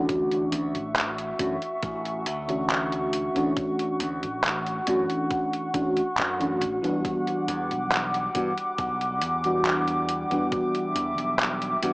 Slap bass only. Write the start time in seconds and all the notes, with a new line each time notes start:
Already playing: D2
0.52 D2
0.74 A1
1.39 F#2
1.83 A1
2.26 D2
3.36 D2
4.00 D2
4.23 A1
4.88 F#2
5.97 muted slap bass stroke
6.18 F#2
6.61 A1
7.48 E2
7.71 B1
8.35 G2
8.78 B1
9.22 E2
10.31 E2
10.95 E2
11.18 B1
11.83 G2